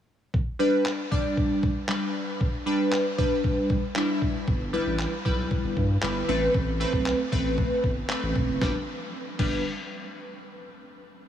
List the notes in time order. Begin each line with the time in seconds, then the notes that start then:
0.34 kick
0.59 G3 D4 B4
0.85 clap
1.11 G3 D4 D5, kick
1.37 kick
1.63 kick
1.89 G3 D4 B4, clap
2.41 kick
2.66 G3 D4 B4
2.92 clap
3.18 G3 D4 B4, kick
3.44 kick
3.70 kick
3.96 G3 D4 E4, clap
4.22 kick
4.48 G1, kick
4.73 G3 E4 B4
4.86 A1
4.99 clap
5.25 B1 G3 E4 B4, kick
5.51 kick
5.64 G1
5.77 G2, kick
6.02 G1 G3 E4 B4, clap
6.28 A1 A3 C4 B4
6.54 A1, kick
6.80 A3 C4 B4
6.93 B1, kick
7.06 clap
7.32 A1 A3 C4 B4, kick
7.58 kick
7.84 G1, kick
8.09 A3 C4 B4, clap
8.23 A1
8.36 E1, kick
8.48 F#1
8.61 G1 G3 D4 B4, kick, snare
9.39 G1 G3 D4 B4, kick, crash